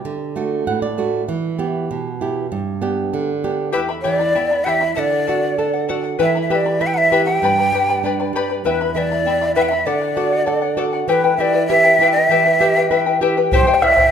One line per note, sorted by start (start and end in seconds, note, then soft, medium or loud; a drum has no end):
0.00 0.94 G4 medium
0.00 0.93 D5 medium
0.05 0.65 D3 medium
0.36 0.85 A3 soft
0.36 0.85 D4 soft
0.36 0.86 F#4 soft
0.67 1.27 A2 medium
0.67 0.81 F#5 medium
0.82 1.25 D5 medium
0.98 1.22 A3 soft
0.98 1.23 D4 soft
0.98 1.23 F#4 soft
1.29 1.88 E3 medium
1.59 2.08 B3 soft
1.59 2.08 E4 soft
1.59 2.08 G4 soft
1.91 2.50 B2 medium
2.21 2.45 B3 soft
2.21 2.45 E4 soft
2.21 2.46 G4 soft
2.52 3.11 G2 medium
2.82 3.31 B3 soft
2.82 3.31 D4 soft
2.82 3.31 G4 soft
3.14 3.73 D3 medium
3.44 3.68 B3 soft
3.44 3.69 D4 soft
3.44 3.68 G4 soft
3.73 4.94 E2 medium
3.73 3.89 E4 medium
3.73 3.89 G4 medium
3.73 3.80 B4 medium
3.73 3.88 E5 medium
3.73 3.89 G5 medium
3.73 3.88 B5 medium
3.89 4.03 E4 soft
3.89 4.03 E5 soft
3.89 4.03 B5 soft
4.02 4.35 E3 soft
4.02 4.20 E4 medium
4.02 4.20 G4 medium
4.02 4.13 C#5 medium
4.02 4.19 E5 medium
4.02 4.20 G5 medium
4.02 4.18 B5 medium
4.13 4.66 D5 medium
4.19 4.34 E4 soft
4.19 4.34 E5 soft
4.19 4.35 B5 soft
4.35 4.65 B3 soft
4.35 4.51 E4 medium
4.35 4.51 E5 medium
4.35 4.51 G5 soft
4.35 4.50 B5 medium
4.51 4.65 E4 soft
4.51 4.65 E5 soft
4.51 4.65 B5 soft
4.64 4.96 E3 soft
4.64 4.81 E4 medium
4.64 4.81 G4 medium
4.64 4.81 E5 medium
4.64 4.70 F#5 medium
4.64 4.82 G5 medium
4.64 4.80 B5 medium
4.69 4.94 E5 medium
4.81 4.95 E4 soft
4.81 4.96 E5 soft
4.81 4.97 B5 soft
4.95 6.16 D3 medium
4.95 5.12 A4 medium
4.95 5.12 D5 medium
4.95 5.00 E5 medium
4.95 5.10 F#5 medium
4.99 5.84 D5 medium
5.11 5.26 D5 soft
5.11 5.27 F#5 soft
5.27 5.58 F#4 soft
5.27 5.43 A4 soft
5.27 5.43 D5 medium
5.27 5.42 F#5 medium
5.43 5.58 D5 soft
5.43 5.58 F#5 soft
5.58 5.74 A4 soft
5.58 5.88 A4 soft
5.58 5.74 D5 soft
5.58 5.72 F#5 medium
5.74 5.88 D5 soft
5.74 5.88 F#5 medium
5.88 6.19 F#4 soft
5.88 6.04 A4 medium
5.88 6.04 D5 medium
5.88 6.03 F#5 medium
6.04 6.18 D5 soft
6.04 6.19 F#5 soft
6.19 7.39 E3 medium
6.19 6.35 E4 medium
6.19 6.35 B4 medium
6.19 6.35 E5 medium
6.19 6.42 E5 medium
6.19 6.35 G5 medium
6.19 6.34 B5 medium
6.35 6.50 E4 soft
6.35 6.50 E5 soft
6.35 6.51 B5 soft
6.42 6.52 E5 soft
6.50 6.65 E4 medium
6.50 6.80 G4 soft
6.50 6.66 B4 medium
6.50 6.65 E5 medium
6.50 6.56 E5 medium
6.50 6.66 G5 medium
6.50 6.65 B5 medium
6.55 6.83 D5 medium
6.66 6.79 E4 soft
6.66 6.80 E5 soft
6.66 6.80 B5 soft
6.80 6.96 E4 soft
6.80 7.11 B4 soft
6.80 6.95 E5 medium
6.80 6.88 E5 medium
6.80 6.96 G5 soft
6.80 6.95 B5 medium
6.87 6.95 G5 medium
6.94 7.11 E4 soft
6.94 7.11 E5 soft
6.94 7.25 E5 medium
6.94 6.99 F#5 medium
6.94 7.12 B5 soft
7.12 7.27 E4 medium
7.12 7.42 G4 soft
7.12 7.27 B4 medium
7.12 7.26 E5 medium
7.12 7.27 G5 medium
7.12 7.25 B5 medium
7.25 7.43 E4 soft
7.25 7.42 E5 soft
7.25 8.29 G5 medium
7.25 7.42 B5 soft
7.42 8.61 G2 medium
7.42 7.58 G4 medium
7.42 7.58 B4 medium
7.42 7.58 D5 medium
7.42 7.58 G5 medium
7.42 7.57 B5 medium
7.58 7.73 B4 soft
7.58 7.74 D5 soft
7.58 7.73 B5 soft
7.72 8.02 G3 soft
7.72 7.89 G4 medium
7.72 7.89 B4 medium
7.72 7.89 D5 medium
7.72 7.89 G5 medium
7.72 7.88 B5 medium
7.89 8.04 B4 soft
7.89 8.04 D5 soft
7.89 8.04 B5 soft
8.04 8.33 D4 soft
8.04 8.20 B4 medium
8.04 8.19 D5 medium
8.04 8.19 G5 medium
8.04 8.18 B5 medium
8.20 8.35 B4 soft
8.20 8.35 D5 soft
8.20 8.35 B5 soft
8.33 8.63 G3 soft
8.33 8.50 G4 medium
8.33 8.50 B4 medium
8.33 8.50 D5 medium
8.33 8.50 G5 medium
8.33 8.49 B5 medium
8.50 8.64 B4 soft
8.50 8.65 D5 soft
8.50 8.65 B5 soft
8.64 9.83 E2 medium
8.64 8.81 E4 medium
8.64 8.80 B4 medium
8.64 8.93 B4 medium
8.64 8.69 C5 medium
8.64 8.80 E5 medium
8.64 8.81 G5 medium
8.64 8.80 B5 medium
8.81 8.95 E4 soft
8.81 8.95 E5 soft
8.81 8.95 B5 soft
8.94 9.25 E3 soft
8.94 9.11 E4 medium
8.94 9.11 B4 soft
8.94 8.99 E5 medium
8.94 9.11 E5 medium
8.94 9.11 G5 medium
8.94 9.10 B5 medium
8.98 9.52 D5 medium
9.12 9.25 E4 soft
9.12 9.26 E5 soft
9.12 9.26 B5 soft
9.25 9.55 B3 soft
9.25 9.41 E4 soft
9.25 9.41 E5 soft
9.25 9.41 G5 soft
9.25 9.40 B5 medium
9.41 9.56 E4 soft
9.41 9.56 E5 soft
9.41 9.56 B5 soft
9.55 9.86 E3 soft
9.55 9.72 E4 medium
9.55 9.72 B4 medium
9.55 9.63 E5 medium
9.55 9.71 E5 medium
9.55 9.72 G5 medium
9.55 9.70 B5 medium
9.62 9.70 G5 medium
9.69 9.88 E5 medium
9.69 9.86 E5 soft
9.69 9.87 B5 soft
9.73 9.88 E4 soft
9.86 11.05 D3 medium
9.86 10.02 A4 medium
9.86 10.78 D5 medium
9.86 10.02 D5 medium
9.86 10.00 F#5 medium
10.01 10.16 D5 soft
10.01 10.16 F#5 soft
10.17 10.47 F#4 soft
10.17 10.32 A4 medium
10.17 10.33 D5 medium
10.17 10.31 F#5 medium
10.32 10.45 D5 soft
10.32 10.46 F#5 soft
10.46 10.62 A4 medium
10.46 10.77 A4 soft
10.46 10.63 D5 medium
10.46 10.61 F#5 medium
10.62 10.76 D5 soft
10.62 10.77 F#5 soft
10.77 11.07 F#4 soft
10.77 10.93 A4 medium
10.77 10.93 D5 medium
10.77 10.92 F#5 medium
10.93 11.09 D5 soft
10.93 11.08 F#5 soft
11.08 12.26 E3 medium
11.08 11.24 E4 medium
11.08 11.24 G4 medium
11.08 11.23 B4 medium
11.08 11.14 C5 medium
11.08 11.24 E5 medium
11.08 11.23 G5 medium
11.13 11.36 B4 medium
11.24 11.39 E4 soft
11.24 11.39 B4 soft
11.24 11.39 G5 soft
11.37 11.68 E4 soft
11.37 11.55 E4 medium
11.37 11.55 G4 medium
11.37 11.53 B4 medium
11.37 11.66 D5 medium
11.37 11.42 E5 medium
11.37 11.55 E5 medium
11.37 11.53 G5 medium
11.54 11.69 E4 soft
11.54 11.69 B4 soft
11.54 11.69 G5 soft
11.67 11.85 E4 medium
11.67 11.99 G4 soft
11.67 11.84 B4 medium
11.67 12.11 E5 medium
11.67 11.85 E5 soft
11.67 11.83 G5 medium
11.84 12.00 E4 soft
11.84 12.00 B4 soft
11.84 12.00 G5 soft
11.99 12.29 E4 soft
11.99 12.16 E4 medium
11.99 12.16 G4 medium
11.99 12.16 B4 medium
11.99 12.16 E5 medium
11.99 12.15 G5 medium
12.12 13.16 E5 medium
12.12 12.30 G5 soft
12.17 12.30 E4 soft
12.17 12.30 B4 soft
12.29 13.48 E3 medium
12.29 12.46 E4 medium
12.29 12.46 G4 medium
12.29 12.45 B4 medium
12.29 12.46 E5 medium
12.29 12.44 G5 medium
12.45 12.60 E4 soft
12.45 12.60 B4 soft
12.45 12.60 G5 soft
12.61 12.76 E4 medium
12.61 12.90 G4 soft
12.61 12.76 G4 medium
12.61 12.76 B4 medium
12.61 12.76 E5 medium
12.61 12.75 G5 medium
12.76 12.90 E4 soft
12.76 12.90 B4 soft
12.76 12.91 G5 soft
12.91 13.06 E4 medium
12.91 13.20 B4 soft
12.91 13.06 B4 medium
12.91 13.06 E5 medium
12.91 13.05 G5 medium
13.06 13.21 E4 soft
13.06 13.21 B4 soft
13.06 13.21 G5 soft
13.21 13.37 E4 medium
13.21 13.51 G4 soft
13.21 13.37 G4 medium
13.21 13.36 B4 medium
13.21 13.37 E5 medium
13.21 13.36 G5 medium
13.37 13.52 E4 soft
13.37 13.52 B4 soft
13.37 13.52 G5 soft
13.52 13.66 E4 medium
13.52 13.67 G4 medium
13.52 13.76 C5 medium
13.52 13.66 C5 medium
13.52 13.67 E5 medium
13.52 13.66 G5 medium
13.52 bombo low medium
13.67 13.81 E4 medium
13.67 13.83 G4 soft
13.67 13.81 C5 medium
13.67 13.81 E5 medium
13.67 13.82 G5 medium
13.74 13.85 G5 medium
13.82 13.96 E4 soft
13.82 13.96 C5 soft
13.82 13.97 E5 soft
13.82 14.11 E5 loud
13.82 13.95 G5 soft
13.82 bombo rim soft
13.96 14.11 E4 soft
13.96 14.10 C5 soft
13.96 14.11 G5 soft
13.96 bombo low soft